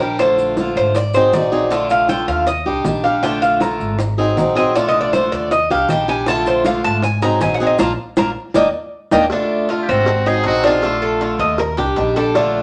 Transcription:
Already playing: upright bass A#1
0.00 steel-string acoustic guitar G3 D4 G4, cuban tres A#4, high bongo, maracas
0.19 steel-string acoustic guitar D3 A3 D4 F4, cuban tres C5, high bongo, maracas
0.38 high bongo, maracas
0.57 steel-string acoustic guitar D3 A3 D4 F4, high bongo, maracas
0.76 upright bass G#1, cuban tres C5, maracas
0.95 cuban tres D5, muted steel-string acoustic guitar stroke, high bongo, maracas
1.14 steel-string acoustic guitar F#3 C4 D#4 G#4, cuban tres C5, high bongo, maracas
1.33 upright bass A#1, steel-string acoustic guitar F#3 C4 D#4 G#4, cuban tres D5, high bongo, low bongo, maracas
1.52 steel-string acoustic guitar F#3 C4 D#4 G#4, high bongo, maracas
1.70 steel-string acoustic guitar D3 A3 D4 F4, high bongo, maracas
1.90 cuban tres F5, high bongo, maracas
2.08 steel-string acoustic guitar D3 A3 D4 F4, cuban tres G5, high bongo, maracas
2.28 upright bass D#2, cuban tres F5, maracas
2.47 cuban tres D#5, muted steel-string acoustic guitar stroke, high bongo, maracas
2.66 upright bass C2, steel-string acoustic guitar G3 D4 G4, high bongo
2.85 upright bass A#1, steel-string acoustic guitar D#3 G3 D4 G4, high bongo, low bongo, maracas
3.04 steel-string acoustic guitar G3 D4 G4, cuban tres F5, high bongo, maracas
3.23 steel-string acoustic guitar D3 A3 D4 F4, cuban tres G5, high bongo, maracas
3.42 cuban tres F5, high bongo, maracas
3.60 steel-string acoustic guitar D3 A3 D4 F4, cuban tres A#5, high bongo, maracas
3.80 upright bass G#1, maracas
3.99 muted steel-string acoustic guitar stroke, high bongo, maracas
4.17 steel-string acoustic guitar F#3 C4 D#4 G#4, high bongo
4.37 upright bass A#1, steel-string acoustic guitar F#3 C4 D#4 G#4, high bongo, low bongo, maracas
4.55 steel-string acoustic guitar F#3 C4 D#4 G#4, cuban tres D#5, high bongo, maracas
4.75 steel-string acoustic guitar D3 A3 D4 F4, cuban tres D5, high bongo, maracas
4.88 cuban tres D#5
4.94 high bongo
5.01 cuban tres D5
5.13 steel-string acoustic guitar D3 A3 D4 F4, cuban tres C5, high bongo, maracas
5.32 upright bass D#2, cuban tres D5, maracas
5.51 cuban tres D#5, muted steel-string acoustic guitar stroke, high bongo, maracas
5.70 upright bass C2, steel-string acoustic guitar G3 D4 G4, cuban tres F5, high bongo
5.89 upright bass A#1, steel-string acoustic guitar D#3 G3 D4 G4, cuban tres G5, high bongo, low bongo, maracas
6.08 steel-string acoustic guitar G3 D4 G4, cuban tres G#5, high bongo, maracas
6.26 steel-string acoustic guitar D3 A3 D4 F4, cuban tres A5, high bongo, maracas
6.46 cuban tres C5, high bongo, maracas
6.65 steel-string acoustic guitar D3 A3 D4 F4, cuban tres F5, high bongo, maracas
6.84 upright bass G#1, cuban tres A5, maracas
7.03 cuban tres G#5, muted steel-string acoustic guitar stroke, high bongo, maracas
7.22 steel-string acoustic guitar F#3 C4 D#4 G#4, cuban tres A#5, high bongo, maracas
7.41 upright bass A#1, steel-string acoustic guitar F#3 C4 D#4 G#4, cuban tres G#5, high bongo, low bongo, maracas
7.54 cuban tres F#5
7.60 steel-string acoustic guitar F#3 C4 D#4 G#4, high bongo, maracas
7.67 cuban tres D#5
7.79 upright bass A#1, steel-string acoustic guitar A#3 D4 F4, cuban tres F5 A5 A#5, high bongo, maracas
8.17 upright bass A#1, steel-string acoustic guitar A#3 D4 F4, cuban tres F5 A5 A#5, high bongo, maracas
8.54 upright bass D#2, steel-string acoustic guitar A#3 D4 D#4, cuban tres D5 D#5 G5, high bongo, maracas
9.11 upright bass D#2, steel-string acoustic guitar A#3 D4 D#4, cuban tres D5 D#5 G5, high bongo, maracas
9.30 steel-string acoustic guitar D3 A3 D4 F4, cuban tres D4, cowbell
9.69 steel-string acoustic guitar D3 A3 D4 F4, cuban tres F4, cowbell
9.82 muted trumpet G4
9.89 upright bass G#1, cuban tres C4, muted trumpet F#4
10.06 muted steel-string acoustic guitar stroke, cowbell
10.26 steel-string acoustic guitar F#3 C4 D#4 G#4, cuban tres D#4, muted trumpet G#4
10.44 upright bass A#1, steel-string acoustic guitar F#3 C4 D#4 G#4, muted trumpet F#4, cowbell
10.64 steel-string acoustic guitar F#3 C4 D#4 G#4, cuban tres D4, muted trumpet F4, cowbell
10.82 steel-string acoustic guitar D3 A3 D4 F4, cowbell
11.02 cuban tres A4
11.21 steel-string acoustic guitar D3 A3 D4 F4, cowbell
11.39 upright bass D#2, cuban tres D#5, cowbell
11.58 cuban tres A#4, muted steel-string acoustic guitar stroke, cowbell
11.77 upright bass C2, steel-string acoustic guitar G3 D4 G4, cuban tres G4, cowbell
11.96 upright bass A#1, steel-string acoustic guitar D#3 G3 D4 G4, cowbell
12.16 steel-string acoustic guitar G3 D4 G4, cuban tres A4, cowbell
12.35 steel-string acoustic guitar D3 A3 D4 F4, cuban tres D4, cowbell

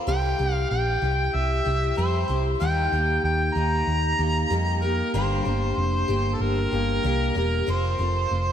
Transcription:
0.07 picked electric bass C2, twelve-string acoustic guitar C3 G3 C4 E4 G4, harmonica G5
0.39 picked electric bass C2, twelve-string acoustic guitar C4 E4 G4
0.53 harmonica F5
0.70 picked electric bass A#1, harmonica G5
1.02 picked electric bass C2, twelve-string acoustic guitar C4 E4 G4
1.35 picked electric bass C2, harmonica E5
1.65 picked electric bass C2, twelve-string acoustic guitar C4 E4 G4
1.96 picked electric bass F2, twelve-string acoustic guitar G3 C4 E4 G4, harmonica C5
2.28 picked electric bass C2, twelve-string acoustic guitar C4 E4 G4
2.60 picked electric bass D#2, twelve-string acoustic guitar D#3 G3 A#3 D#4 G4, harmonica G5
2.92 picked electric bass D#2, twelve-string acoustic guitar A#3 D#4 G4
3.24 picked electric bass D#2, harmonica G5
3.54 picked electric bass D#2, twelve-string acoustic guitar A#3 D#4 G4, harmonica A#5
3.87 picked electric bass D#2
4.19 picked electric bass D#2, twelve-string acoustic guitar A#3 D#4 G4
4.50 picked electric bass F2, twelve-string acoustic guitar G3 A#3 D#4 G4
4.82 twelve-string acoustic guitar A#3 D#4 G4, harmonica A#4
5.14 picked electric bass G1, twelve-string acoustic guitar G2 D3 G3 A#3 D4 G4, harmonica C5
5.45 picked electric bass G1, twelve-string acoustic guitar G3 A#3 D4 G4
5.78 picked electric bass F1
6.08 picked electric bass G1, twelve-string acoustic guitar G3 A#3 D4 G4
6.34 harmonica A4
6.40 picked electric bass G1, harmonica A#4
6.71 picked electric bass G1, twelve-string acoustic guitar G3 A#3 D4 G4
7.03 picked electric bass C2, twelve-string acoustic guitar G3 A#3 D4 G4
7.35 picked electric bass E1, twelve-string acoustic guitar G3 A#3 D4 G4, harmonica A#4
7.67 picked electric bass F1, twelve-string acoustic guitar F3 C4 F4 A4, harmonica C5
7.99 picked electric bass F1, twelve-string acoustic guitar C4 F4 A4
8.31 picked electric bass F1

